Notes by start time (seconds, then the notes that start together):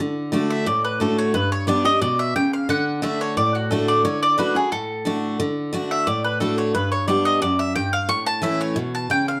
0.00 D3
0.32 D3 A3 D4 F#4
0.50 E5
0.66 A2 D5
0.84 B4
1.00 D3 A3 D4 F#4 A4
1.18 C#5
1.34 G2 B4
1.52 C#5
1.67 G3 B3 D4 G4 D5
1.84 D4 G4 D#5
2.01 B2 D5
2.19 E5
2.36 C#3 G5
2.53 F5
2.69 D3 F#5
3.02 D3 A3 D4 F#4 E5
3.21 C#5
3.37 A2 D5
3.55 F#4
3.71 D3 A3 D4 F#4 A4
3.88 D5
4.05 D3 C#5
4.23 D5
4.38 D3 A3 D4 F#4 B4
4.55 D4 F#4 G#4
4.72 A2 A4
5.05 D3 A3 D4 F#4
5.40 D3
5.73 D3 A3 D4 F#4
5.91 E5
6.07 A2 D5
6.24 B4
6.40 D3 A3 D4 F#4 A4
6.58 C#5
6.74 G2 B4
6.92 C#5
7.08 G3 B3 D4 G4 D5
7.25 D#5
7.42 F#2 D5
7.59 E5
7.75 G2 G5
7.93 F5
8.09 A2 C#6
8.26 A5
8.42 E3 A3 C#4 E4 E5
8.61 C#5
8.76 B2
8.95 A5
9.10 C#3 G5
9.28 F5